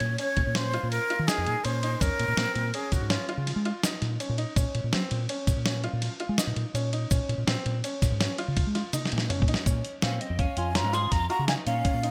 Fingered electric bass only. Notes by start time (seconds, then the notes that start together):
0.00 A#2
0.37 A#2
0.47 A#2
0.83 A#2
1.19 D#3
1.38 F2
1.47 A#2
1.65 A#2
2.01 F2
2.19 A#2
2.28 A#2
2.37 A#2
2.55 A#2
2.92 A#2
3.01 G#2
3.37 C#3
3.56 G#3
4.02 A#2
4.29 A#2
4.56 A#2
4.75 A#2
4.84 A#2
4.94 F#3
5.11 A#2
5.47 A#2
5.56 A#2
5.93 A#2
6.29 G#3
6.47 A#2
6.56 A#2
6.74 A#2
7.11 A#2
7.29 A#2
7.38 A#2
7.47 A#2
7.66 A#2
8.02 A#2
8.12 G#2
8.48 C#3
8.67 G#3
9.12 A#2
9.40 A#2
9.67 A#2
10.03 A#2
10.30 F2
10.57 F2
10.84 G#2
11.12 F2
11.39 C#3
11.66 A#2
11.94 A#2